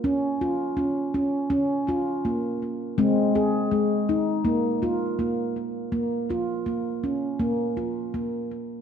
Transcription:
<<
  \new Staff \with { instrumentName = "Handpan" } { \time 4/4 \key bes \minor \tempo 4 = 82 r8 f'4 des'4 f'8 bes4 | c'8 aes'4 ees'4 f'8 bes4 | r8 f'4 des'4 f'8 bes4 | }
  \new Staff \with { instrumentName = "Handpan" } { \time 4/4 \key bes \minor des'4 des'8 r8 des'2 | aes4 aes8 r8 bes2 | bes4 bes8 r8 bes2 | }
>>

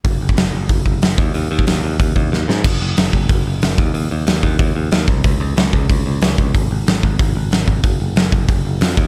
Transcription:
<<
  \new Staff \with { instrumentName = "Picked electric bass" } { \clef bass \time 4/4 \key ges \major \tempo 4 = 185 ges,,8 ges,,8 ges,,8 ges,,8 ges,,8 ges,,8 ges,,8 ees,8 | ees,8 ees,8 ees,8 ees,8 ees,8 ees,8 ees,8 aes,8 | ges,,8 ges,,8 ges,,8 ges,,8 ges,,8 ges,,8 ges,,8 ees,8 | ees,8 ees,8 ees,8 ees,8 ees,8 ees,8 ees,8 c,8 |
des,8 des,8 des,8 des,8 des,8 des,8 des,8 des,8 | aes,,8 aes,,8 aes,,8 aes,,8 aes,,8 aes,,8 aes,,8 aes,,8 | ges,,8 ges,,8 ges,,8 ges,,8 ges,,8 ges,,8 f,8 ees,8 | }
  \new DrumStaff \with { instrumentName = "Drums" } \drummode { \time 4/4 <hho bd>8. bd16 <hho sn>4 <hho bd>8 bd8 <hho sn>8 bd8 | hho8. bd16 <hho sn>4 <hho bd>8 bd8 sn8 sn8 | <cymc bd>4 <hho sn>8 bd8 <hho bd>4 <hho sn>8 bd8 | hho4 <hho sn>8 bd8 <hho bd>4 <hho sn>8 bd8 |
<hho bd>4 <hho sn>8 bd8 <hho bd>4 <hho sn>8 bd8 | <hho bd>4 <hho sn>8 bd8 <hho bd>4 <hho sn>8 bd8 | <hho bd>4 <hho sn>8 bd8 <hho bd>4 <hho sn>8 bd8 | }
>>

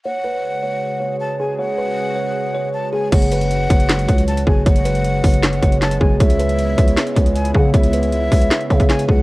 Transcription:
<<
  \new Staff \with { instrumentName = "Flute" } { \time 4/4 \key cis \phrygian \tempo 4 = 156 fis''2. a''8 gis''8 | fis''2. a''8 gis''8 | fis''2. a''8 gis''8 | fis''2. a''8 gis''8 |
e''2. gis''8 fis''8 | e''2. gis''8 fis''8 | }
  \new Staff \with { instrumentName = "Kalimba" } { \time 4/4 \key cis \phrygian cis''8 b'4 cis''4 cis''4 gis'8 | cis''8 b'4 cis''4 cis''4 gis'8 | cis''8 b'4 cis''4 cis''4 gis'8 | cis''8 b'4 cis''4 cis''4 gis'8 |
cis''8 b'4 cis''4 cis''4 gis'8 | cis''8 b'4 cis''4 cis''4 gis'8 | }
  \new Staff \with { instrumentName = "Ambient pad" } { \time 4/4 \key cis \phrygian << { <gis fis' gis'>1~ | <gis fis' gis'>1 | <fis gis fis'>1~ | <fis gis fis'>1 |
<b e'>1~ | <b e'>1 | } \\ { cis1~ | cis1 | cis1~ | cis1~ |
cis1~ | cis1 | } >> }
  \new Staff \with { instrumentName = "808-style bass" } { \clef bass \time 4/4 \key cis \phrygian r1 | r1 | fis,,4. fis,,4 cis,4 fis,,8 | fis,,4. fis,,4 fis,,4 fis,,8 |
cis,4. cis,8 r8 cis,4 cis8 | cis,4. cis,8 r8 cis4 cis,8 | }
  \new DrumStaff \with { instrumentName = "Drums" } \drummode { \time 4/4 r4 r4 r4 r4 | r4 r4 r4 r4 | <cymc hh bd>16 hh16 hh16 hh16 hh8 <hh bd>16 hh16 <hc hh sn>16 hh16 <hh bd>16 hh16 hh16 hh16 bd8 | <hh bd>16 hh16 hh16 hh16 hh8 <hho bd>16 hh16 <hc hh sn>16 hh16 <hh bd>16 hh16 <hc hh sn>16 hh16 bd8 |
<hh bd>16 hh16 hh16 hh16 hh8 <hh bd>16 hh16 <hc hh sn>16 hh16 <hh bd>16 hh16 hh16 hh16 bd8 | <hh bd>16 hh16 hh16 hh16 hh8 <hho bd>16 hh16 <hc hh sn>16 hh16 <hh bd>16 <hh bd>16 <hc hh sn>16 hh16 bd8 | }
>>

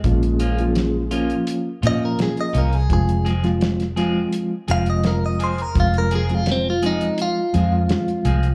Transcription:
<<
  \new Staff \with { instrumentName = "Clean electric guitar" } { \time 4/4 \key f \minor \tempo 4 = 84 aes4. r4 ees''16 bes'16 aes'16 ees''16 bes'16 aes'16 | aes'8 r2 f''16 ees''16 bes'16 ees''16 c''16 bes'16 | f'16 bes'16 aes'16 f'16 c'16 f'16 ees'8 f'2 | }
  \new Staff \with { instrumentName = "Clean electric guitar" } { \time 4/4 \key f \minor r8 <f bes des' f'>8 r8 <f bes des' f'>8 r8 <f bes des' f'>8 r8 <f bes des' f'>8 | r8 <f aes c' aes'>8 r8 <f aes c' aes'>8 r8 <f aes c' aes'>8 r8 <f aes c' aes'>8 | r8 <f aes c' aes'>8 r8 <f aes c' aes'>8 r8 <f aes c' aes'>8 r8 <f aes c' aes'>8 | }
  \new Staff \with { instrumentName = "Reed electric piano" } { \time 4/4 \key f \minor <f bes des' f'>8 r16 <f bes des' f'>8 r16 <f bes des' f'>8. r16 <f bes des' f'>4~ <f bes des' f'>16 r16 | <f aes c' f'>8 r16 <f aes c' f'>8 r16 <f aes c' f'>8. r16 <f aes c' f'>4~ <f aes c' f'>16 r16 | <f aes c' f'>8 r16 <f aes c' f'>8 r16 <f aes c' f'>8. r16 <f aes c' f'>4~ <f aes c' f'>16 r16 | }
  \new Staff \with { instrumentName = "Fingered electric bass" } { \clef bass \time 4/4 \key f \minor bes,,2 r8 bes,8 r8 c,8 | f,,2 r8 f,,4. | f,,2 r8 f,8 r8 c,8 | }
  \new DrumStaff \with { instrumentName = "Drums" } \drummode { \time 4/4 <hh bd>16 hh16 hh16 hh16 <hh sn>8 hh16 hh16 hh8 hh8 <hh sn>16 hh16 hh16 hh16 | <hh bd>16 hh16 <hh sn>16 <hh sn>16 <hh sn>16 <hh sn>16 <hh sn>8 hh8 hh16 hh16 <hh sn>8 hh16 hh16 | <hh bd>16 hh16 hh16 hh16 <hh sn>8 hh16 hh16 hh8 hh8 <hh sn>16 hh16 hh16 hh16 | }
>>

